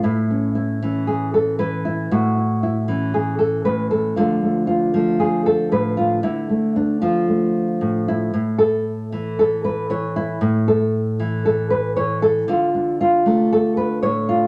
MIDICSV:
0, 0, Header, 1, 2, 480
1, 0, Start_track
1, 0, Key_signature, 3, "major"
1, 0, Tempo, 518135
1, 31, Time_signature, 4, 2, 24, 8
1, 13407, End_track
2, 0, Start_track
2, 0, Title_t, "Nylon-string guitar"
2, 0, Program_c, 0, 24
2, 0, Note_on_c, 0, 57, 52
2, 29, Note_on_c, 0, 64, 68
2, 37, Note_on_c, 0, 45, 64
2, 278, Note_off_c, 0, 57, 0
2, 282, Note_on_c, 0, 61, 46
2, 499, Note_off_c, 0, 64, 0
2, 510, Note_on_c, 0, 64, 69
2, 764, Note_on_c, 0, 52, 52
2, 766, Note_off_c, 0, 61, 0
2, 770, Note_on_c, 0, 61, 40
2, 993, Note_on_c, 0, 68, 77
2, 1233, Note_off_c, 0, 68, 0
2, 1241, Note_on_c, 0, 69, 73
2, 1462, Note_off_c, 0, 52, 0
2, 1468, Note_off_c, 0, 69, 0
2, 1471, Note_on_c, 0, 71, 82
2, 1472, Note_off_c, 0, 64, 0
2, 1473, Note_on_c, 0, 52, 55
2, 1714, Note_on_c, 0, 64, 81
2, 1925, Note_off_c, 0, 52, 0
2, 1928, Note_off_c, 0, 45, 0
2, 1933, Note_off_c, 0, 61, 0
2, 1952, Note_off_c, 0, 71, 0
2, 1959, Note_on_c, 0, 45, 66
2, 1964, Note_on_c, 0, 66, 76
2, 2185, Note_off_c, 0, 64, 0
2, 2196, Note_on_c, 0, 64, 44
2, 2425, Note_off_c, 0, 64, 0
2, 2436, Note_on_c, 0, 64, 76
2, 2668, Note_on_c, 0, 52, 53
2, 2676, Note_on_c, 0, 61, 41
2, 2906, Note_off_c, 0, 66, 0
2, 2910, Note_on_c, 0, 68, 80
2, 3134, Note_off_c, 0, 68, 0
2, 3138, Note_on_c, 0, 69, 75
2, 3374, Note_off_c, 0, 45, 0
2, 3377, Note_off_c, 0, 69, 0
2, 3381, Note_on_c, 0, 71, 85
2, 3384, Note_off_c, 0, 64, 0
2, 3385, Note_on_c, 0, 45, 51
2, 3616, Note_off_c, 0, 71, 0
2, 3619, Note_on_c, 0, 69, 85
2, 3830, Note_off_c, 0, 45, 0
2, 3832, Note_off_c, 0, 61, 0
2, 3856, Note_on_c, 0, 65, 71
2, 3857, Note_off_c, 0, 52, 0
2, 3857, Note_off_c, 0, 69, 0
2, 3865, Note_on_c, 0, 50, 70
2, 3870, Note_on_c, 0, 53, 42
2, 3877, Note_on_c, 0, 57, 48
2, 4101, Note_off_c, 0, 57, 0
2, 4105, Note_on_c, 0, 57, 43
2, 4317, Note_off_c, 0, 65, 0
2, 4328, Note_on_c, 0, 65, 88
2, 4571, Note_off_c, 0, 53, 0
2, 4575, Note_on_c, 0, 53, 58
2, 4578, Note_off_c, 0, 57, 0
2, 4581, Note_on_c, 0, 57, 41
2, 4815, Note_on_c, 0, 68, 82
2, 5055, Note_off_c, 0, 68, 0
2, 5059, Note_on_c, 0, 69, 77
2, 5293, Note_off_c, 0, 65, 0
2, 5296, Note_on_c, 0, 45, 53
2, 5297, Note_off_c, 0, 69, 0
2, 5301, Note_on_c, 0, 71, 79
2, 5531, Note_on_c, 0, 65, 81
2, 5746, Note_off_c, 0, 45, 0
2, 5747, Note_off_c, 0, 53, 0
2, 5750, Note_off_c, 0, 50, 0
2, 5772, Note_off_c, 0, 65, 0
2, 5772, Note_on_c, 0, 50, 68
2, 5776, Note_on_c, 0, 64, 79
2, 6013, Note_off_c, 0, 57, 0
2, 6017, Note_off_c, 0, 71, 0
2, 6017, Note_on_c, 0, 57, 45
2, 6257, Note_off_c, 0, 64, 0
2, 6263, Note_on_c, 0, 62, 80
2, 6496, Note_off_c, 0, 62, 0
2, 6499, Note_on_c, 0, 65, 78
2, 6501, Note_on_c, 0, 53, 51
2, 6743, Note_off_c, 0, 57, 0
2, 6747, Note_on_c, 0, 57, 42
2, 7236, Note_on_c, 0, 45, 51
2, 7475, Note_off_c, 0, 65, 0
2, 7487, Note_on_c, 0, 64, 90
2, 7689, Note_off_c, 0, 50, 0
2, 7692, Note_off_c, 0, 53, 0
2, 7693, Note_off_c, 0, 45, 0
2, 7722, Note_on_c, 0, 45, 61
2, 7952, Note_on_c, 0, 69, 81
2, 8445, Note_off_c, 0, 64, 0
2, 8453, Note_on_c, 0, 52, 55
2, 8457, Note_on_c, 0, 64, 44
2, 8681, Note_off_c, 0, 69, 0
2, 8700, Note_on_c, 0, 69, 88
2, 8931, Note_off_c, 0, 69, 0
2, 8935, Note_on_c, 0, 71, 91
2, 9159, Note_off_c, 0, 52, 0
2, 9170, Note_off_c, 0, 71, 0
2, 9170, Note_on_c, 0, 52, 55
2, 9176, Note_on_c, 0, 73, 84
2, 9403, Note_off_c, 0, 64, 0
2, 9414, Note_on_c, 0, 64, 98
2, 9617, Note_off_c, 0, 45, 0
2, 9618, Note_off_c, 0, 52, 0
2, 9644, Note_on_c, 0, 45, 68
2, 9889, Note_off_c, 0, 73, 0
2, 9893, Note_on_c, 0, 69, 92
2, 9989, Note_off_c, 0, 57, 0
2, 10365, Note_off_c, 0, 64, 0
2, 10372, Note_on_c, 0, 52, 56
2, 10376, Note_on_c, 0, 64, 42
2, 10601, Note_off_c, 0, 69, 0
2, 10612, Note_on_c, 0, 69, 84
2, 10839, Note_off_c, 0, 69, 0
2, 10842, Note_on_c, 0, 71, 88
2, 11073, Note_off_c, 0, 52, 0
2, 11079, Note_off_c, 0, 71, 0
2, 11084, Note_on_c, 0, 52, 57
2, 11084, Note_on_c, 0, 73, 89
2, 11319, Note_off_c, 0, 73, 0
2, 11323, Note_on_c, 0, 69, 96
2, 11527, Note_off_c, 0, 45, 0
2, 11531, Note_off_c, 0, 52, 0
2, 11535, Note_off_c, 0, 64, 0
2, 11559, Note_off_c, 0, 69, 0
2, 11560, Note_on_c, 0, 50, 71
2, 11574, Note_on_c, 0, 65, 86
2, 11808, Note_on_c, 0, 62, 47
2, 12038, Note_off_c, 0, 65, 0
2, 12049, Note_on_c, 0, 65, 86
2, 12277, Note_off_c, 0, 62, 0
2, 12282, Note_on_c, 0, 57, 57
2, 12288, Note_on_c, 0, 62, 41
2, 12530, Note_on_c, 0, 69, 89
2, 12753, Note_off_c, 0, 69, 0
2, 12756, Note_on_c, 0, 71, 91
2, 12989, Note_off_c, 0, 71, 0
2, 12993, Note_on_c, 0, 73, 87
2, 12998, Note_off_c, 0, 65, 0
2, 12998, Note_on_c, 0, 45, 58
2, 13236, Note_on_c, 0, 65, 80
2, 13407, Note_off_c, 0, 45, 0
2, 13407, Note_off_c, 0, 50, 0
2, 13407, Note_off_c, 0, 57, 0
2, 13407, Note_off_c, 0, 62, 0
2, 13407, Note_off_c, 0, 65, 0
2, 13407, Note_off_c, 0, 73, 0
2, 13407, End_track
0, 0, End_of_file